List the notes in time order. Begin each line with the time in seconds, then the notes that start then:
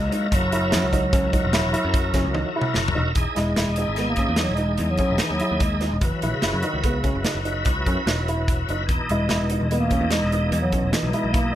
Already playing: C#2 F#3 G#3 E4 A#4
0.12 D#4, closed hi-hat
0.31 F#1 F#3 E4 A#4, kick, closed hi-hat
0.42 F#1
0.52 E4, closed hi-hat
0.72 F#2 E4, snare, closed hi-hat
0.84 C#2
0.93 D#4, kick, closed hi-hat
1.13 C#4, kick, closed hi-hat
1.33 D#4, kick, closed hi-hat
1.45 E1
1.53 E4, snare, closed hi-hat
1.64 E1
1.73 E4, closed hi-hat
1.85 F#2
1.94 kick, closed hi-hat
2.14 F#1 C#4, kick, snare, closed hi-hat
2.25 C#2
2.34 D#4, high tom
2.56 E4
2.61 mid tom
2.74 F#1, snare
2.88 floor tom
2.95 E1 D#4
3.14 E1 D#4 E4 G#4, kick, closed hi-hat
3.36 E1 G#3 E4, snare, closed hi-hat
3.56 E1 E4, snare, closed hi-hat
3.68 E1
3.76 D#4, closed hi-hat
3.88 G#1
3.96 G#3 B3, snare, closed hi-hat
4.09 A#3
4.16 C#4, kick, closed hi-hat
4.29 E2
4.36 G#3 D#4, snare, closed hi-hat
4.43 F#3
4.49 E1
4.55 G#3 D#4, closed hi-hat
4.78 E2 G#3, closed hi-hat
4.91 F#3
4.97 C#4, kick, closed hi-hat
5.10 E1
5.18 E3 D#4, snare, closed hi-hat
5.30 D#2 F#3
5.40 E4, closed hi-hat
5.52 D#2
5.60 G#3, kick, closed hi-hat
5.81 D#4, snare, closed hi-hat
5.92 E1
6.01 F#1 E3 F#3 E4 B4, kick, closed hi-hat
6.22 A#1 E4, closed hi-hat
6.34 C#3
6.42 F#1 E4, snare, closed hi-hat
6.53 F#2
6.62 D#3 D#4, closed hi-hat
6.74 C#2
6.84 C#3 B3, kick, closed hi-hat
7.04 C#4, kick, closed hi-hat
7.15 F#1
7.25 D#4, snare, closed hi-hat
7.35 F#1
7.45 D#4, closed hi-hat
7.65 C#2, kick, closed hi-hat
7.86 F#2 C#4, kick, closed hi-hat
8.06 E1 D#4, snare, closed hi-hat
8.28 E4, closed hi-hat
8.48 kick, closed hi-hat
8.69 F#1 D#4, closed hi-hat
8.87 E1 B2 E3 D#4, kick, closed hi-hat
9.09 E1 G#3 E4, closed hi-hat
9.29 E1 E4, snare, closed hi-hat
9.41 E1
9.50 D#4, closed hi-hat
9.61 E1
9.70 G#3 B3, closed hi-hat
9.79 A#3
9.91 C#4, kick, closed hi-hat
10.01 E2
10.11 G#3 D#4, snare, closed hi-hat
10.22 E1
10.32 D#4, closed hi-hat
10.52 E2 G#3, closed hi-hat
10.61 F#3
10.72 C#4, kick, closed hi-hat
10.83 E1
10.92 E3 D#4, snare, closed hi-hat
11.03 B1
11.10 G#3 E4, closed hi-hat
11.24 B1
11.33 A#3, kick, closed hi-hat